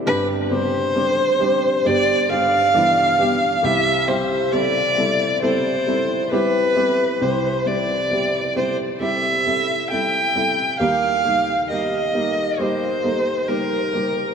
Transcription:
<<
  \new Staff \with { instrumentName = "Violin" } { \time 4/4 \key g \mixolydian \tempo 4 = 67 b'8 c''4. d''8 f''4. | e''8 c''8 d''4 c''4 b'4 | c''8 d''4 c''8 e''4 g''4 | f''4 ees''4 c''4 bes'4 | }
  \new Staff \with { instrumentName = "Felt piano" } { \time 4/4 \key g \mixolydian <g c' d' g'>8 <g c' d' g'>8 <g c' d' g'>8 <g c' d' g'>8 <g b d' g'>8 <g b d' g'>8 <e g b d'>8 <g b d' g'>8 | <g c' e' g'>8 <g c' e' g'>8 <g c' e' a'>8 <g c' e' a'>8 <g c' e' a'>8 <g c' e' a'>8 <g c' e' g'>8 <g c' e' g'>8 | <g c' e' g'>8 <g c' e' g'>8 <g c' e' g'>8 <g c' e' g'>8 <g c' e' g'>8 <g c' e' a'>8 <g c' e' a'>8 <g c' e' a'>8 | <g bes ees' g'>8 <g bes ees' bes'>8 <g bes ees' g'>8 <g bes ees' g'>8 <g bes ees' g'>8 <g bes ees' a'>8 <g bes ees' g'>8 <g bes ees' g'>8 | }
  \new Staff \with { instrumentName = "Felt piano" } { \clef bass \time 4/4 \key g \mixolydian <g,, g,>2 <g,, g,>2 | <c, c>1 | <c, c>1 | <ees, ees>1 | }
>>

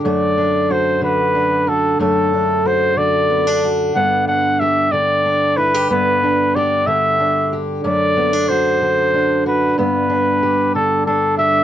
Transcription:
<<
  \new Staff \with { instrumentName = "Trumpet" } { \time 6/8 \key g \major \tempo 4. = 62 d''4 c''8 b'4 a'8 | a'4 c''8 d''4 r8 | fis''8 fis''8 e''8 d''4 b'8 | b'4 d''8 e''4 r8 |
d''4 c''4. b'8 | b'4. a'8 a'8 e''8 | }
  \new Staff \with { instrumentName = "Steel-string acoustic guitar" } { \time 6/8 \key g \major << { a8 d'8 fis'4 d'8 fis'8 | a8 d'8 fis'4 b16 d'16 fis'8 | b8 d'8 g'4 d'8 e'16 g'16 | b8 d'8 g'4 d'8 g'8 |
a8 b16 d'16 fis'4 d'8 fis'8 | b8 d'8 g'4 d'8 g'8 | } \\ { <fis, d>4. d4. | fis,4. d4. | g,4. d4. | g,4. d4. |
fis,4. d4. | g,4. d4. | } >> }
>>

